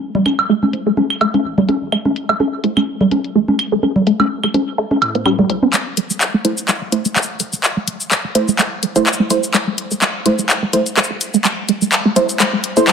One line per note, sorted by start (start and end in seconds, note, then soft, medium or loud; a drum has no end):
0.15 0.22 A1 medium
0.15 0.19 A3 loud
0.15 low conga medium
0.26 0.31 A3 medium
0.26 closed hi-hat medium
0.26 high conga soft
0.26 claves medium
0.39 0.46 E1 medium
0.39 high woodblock medium
0.49 0.54 A3 loud
0.63 0.67 A3 medium
0.63 high conga soft
0.73 0.85 A3 medium
0.73 0.85 E4 medium
0.73 0.85 C5 medium
0.73 closed hi-hat medium
0.86 0.90 A3 loud
0.97 1.02 A3 medium
0.97 high conga soft
1.10 claves medium
1.21 1.26 A3 loud
1.21 closed hi-hat medium
1.21 high woodblock medium
1.34 1.44 A3 medium
1.34 1.38 A3 medium
1.34 1.44 E4 medium
1.34 1.44 C5 medium
1.34 closed hi-hat soft
1.34 high conga soft
1.45 1.53 A1 medium
1.58 1.62 A3 medium
1.58 low conga medium
1.68 1.76 A3 medium
1.68 1.74 A3 medium
1.68 1.76 E4 medium
1.68 1.76 C5 medium
1.68 closed hi-hat medium
1.68 high conga soft
1.81 1.89 G1 medium
1.92 1.97 A3 loud
1.92 claves medium
2.05 2.13 A1 loud
2.05 2.10 A3 medium
2.05 high conga soft
2.16 closed hi-hat medium
2.29 2.36 E1 loud
2.29 2.33 A3 loud
2.29 high woodblock medium
2.40 2.45 A3 medium
2.40 high conga soft
2.64 2.71 A3 medium
2.64 2.69 A3 loud
2.64 2.71 E4 medium
2.64 2.71 C5 medium
2.64 closed hi-hat medium
2.77 2.81 A3 medium
2.77 high conga soft
2.77 claves medium
3.01 3.05 A3 loud
3.01 low conga medium
3.11 3.19 A3 medium
3.11 3.17 A3 medium
3.11 3.19 E4 medium
3.11 3.19 C5 medium
3.11 closed hi-hat medium
3.11 high conga soft
3.24 closed hi-hat soft
3.35 3.44 A1 medium
3.35 3.40 A3 loud
3.48 3.52 A3 medium
3.48 high conga soft
3.59 closed hi-hat medium
3.59 claves medium
3.72 3.79 G1 medium
3.72 3.76 A3 loud
3.83 3.88 A3 medium
3.83 high conga soft
3.96 4.03 A1 loud
3.96 low conga medium
4.07 4.12 A3 loud
4.07 closed hi-hat medium
4.20 4.27 E1 medium
4.20 4.24 A3 medium
4.20 high conga soft
4.20 high woodblock medium
4.44 4.48 A3 loud
4.44 claves medium
4.54 4.66 A3 medium
4.54 4.59 A3 medium
4.54 4.66 E4 medium
4.54 4.66 C5 medium
4.54 closed hi-hat medium
4.54 high conga soft
4.78 4.83 A3 loud
4.91 4.95 A3 medium
4.91 high conga soft
5.02 5.44 A2 medium
5.02 closed hi-hat medium
5.02 high woodblock medium
5.15 5.25 A3 medium
5.15 5.21 B3 medium
5.15 5.25 E4 medium
5.15 5.25 C5 medium
5.15 closed hi-hat soft
5.26 5.31 G3 loud
5.26 high conga soft
5.26 claves medium
5.39 5.43 A3 medium
5.39 low conga medium
5.49 5.58 C2 loud
5.49 5.53 G3 medium
5.49 5.57 A3 medium
5.49 5.57 E4 medium
5.49 5.57 C5 medium
5.49 closed hi-hat medium
5.63 5.65 C4 medium
5.63 high conga soft
5.73 5.78 A3 medium
5.73 clap soft
5.73 shaker medium
5.97 6.02 A3 loud
5.97 closed hi-hat medium
6.10 6.14 A3 medium
6.10 shaker soft
6.21 clap soft
6.21 shaker medium
6.34 6.38 A3 loud
6.45 6.52 A3 medium
6.45 6.50 A3 medium
6.45 6.52 E4 medium
6.45 6.52 C5 medium
6.45 closed hi-hat medium
6.58 shaker soft
6.69 6.74 A3 loud
6.69 clap soft
6.69 shaker medium
6.82 6.86 A3 medium
6.92 7.00 A3 medium
6.92 7.00 E4 medium
6.92 7.00 C5 medium
6.92 closed hi-hat medium
7.05 7.10 A3 loud
7.05 closed hi-hat soft
7.05 shaker soft
7.16 7.21 A3 medium
7.16 clap soft
7.16 shaker soft
7.23 shaker medium
7.40 7.45 A3 loud
7.40 closed hi-hat medium
7.40 shaker medium
7.53 7.57 A3 medium
7.53 shaker soft
7.64 clap medium
7.64 shaker medium
7.77 7.81 A3 loud
7.88 7.93 A3 medium
7.88 closed hi-hat medium
8.01 shaker soft
8.11 8.16 A3 loud
8.11 clap medium
8.11 shaker medium
8.25 8.29 A3 medium
8.35 8.47 A3 medium
8.35 8.47 E4 medium
8.35 8.47 C5 medium
8.35 closed hi-hat medium
8.48 8.52 A3 loud
8.48 shaker soft
8.59 8.64 A3 medium
8.59 clap medium
8.59 shaker medium
8.83 8.88 A3 loud
8.83 closed hi-hat medium
8.96 9.06 A3 medium
8.96 9.00 A3 medium
8.96 9.06 E4 medium
8.96 9.06 C5 medium
8.96 closed hi-hat soft
8.96 shaker soft
9.07 clap medium
9.07 shaker soft
9.13 shaker soft
9.20 9.24 A3 loud
9.30 9.38 A3 medium
9.30 9.35 A3 medium
9.30 9.38 E4 medium
9.30 9.38 C5 medium
9.30 closed hi-hat medium
9.30 shaker medium
9.44 shaker soft
9.54 9.59 A3 loud
9.54 clap medium
9.54 shaker medium
9.67 9.71 A3 medium
9.78 closed hi-hat medium
9.91 9.95 A3 loud
9.91 shaker soft
10.02 10.07 A3 medium
10.02 clap medium
10.02 shaker medium
10.26 10.33 A3 medium
10.26 10.31 A3 loud
10.26 10.33 E4 medium
10.26 10.33 C5 medium
10.26 closed hi-hat loud
10.39 10.43 A3 medium
10.39 shaker soft
10.50 clap medium
10.50 shaker soft
10.63 10.67 A3 loud
10.73 10.81 A3 medium
10.73 10.78 A3 medium
10.73 10.81 E4 medium
10.73 10.81 C5 medium
10.73 closed hi-hat medium
10.86 closed hi-hat soft
10.86 shaker soft
10.97 11.02 A3 loud
10.97 clap medium
10.97 shaker soft
11.04 shaker soft
11.10 11.14 A3 medium
11.21 closed hi-hat medium
11.21 shaker soft
11.34 11.38 A3 loud
11.34 shaker soft
11.45 11.50 A3 medium
11.45 clap medium
11.45 shaker soft
11.69 11.74 A3 medium
11.69 closed hi-hat loud
11.82 11.86 A3 medium
11.82 shaker soft
11.92 clap medium
11.92 shaker soft
12.05 12.10 A3 loud
12.16 12.28 A3 medium
12.16 12.21 A3 medium
12.16 12.28 E4 medium
12.16 12.28 C5 medium
12.16 closed hi-hat medium
12.16 shaker soft
12.29 closed hi-hat soft
12.29 shaker soft
12.40 12.45 A3 loud
12.40 clap medium
12.40 shaker soft
12.53 12.57 A3 medium
12.64 closed hi-hat medium
12.77 12.86 A3 medium
12.77 12.83 B3 medium
12.77 12.86 E4 medium
12.77 12.86 C5 medium
12.77 closed hi-hat soft
12.77 shaker soft
12.88 12.93 G3 loud
12.88 clap medium
12.88 shaker soft